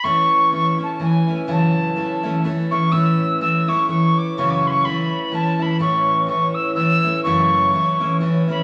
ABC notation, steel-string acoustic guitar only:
X:1
M:3/4
L:1/8
Q:"Swing" 1/4=125
K:A
V:1 name="Steel-string acoustic guitar"
[A,,E,A,CE]2 [E,A,CE] [A,CE] [E,A,CE] [A,CE] | [F,,C,E,A,CE]2 [E,A,CE] [E,A,CE] [E,A,CE] [E,A,CE] | [A,,E,A,CE]2 [E,A,CE] [A,CE] [E,A,CE]2 | [F,,C,E,A,CE]2 [E,A,CE]2 [E,A,CE] [E,A,CE] |
[A,,E,A,CE]2 [E,A,CE]2 [E,A,CE] [A,CE] | [F,,C,E,A,CE]2 [E,A,CE] [E,A,CE] [E,A,CE] [E,A,CE] |]